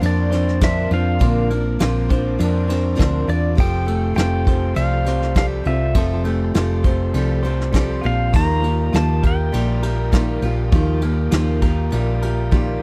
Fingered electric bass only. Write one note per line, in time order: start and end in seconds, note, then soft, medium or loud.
0.02 0.87 F2 medium
0.91 1.19 F2 loud
1.21 1.77 A#1 loud
1.81 2.36 A#1 loud
2.40 2.95 F2 medium
3.00 3.26 D2 medium
3.28 3.55 E2 medium
3.58 4.14 F1 loud
4.16 4.72 F1 loud
4.76 5.62 C2 loud
5.66 5.94 C2 loud
5.95 6.51 F1 loud
6.55 7.11 F1 loud
7.14 8.00 C2 loud
8.05 8.32 A#1 loud
8.34 8.89 D#2 loud
8.94 9.49 D#2 loud
9.54 10.39 A#1 loud
10.42 10.71 A#1 loud
10.73 11.29 D#2 loud
11.32 11.89 D#2 loud
11.93 12.79 A#1 loud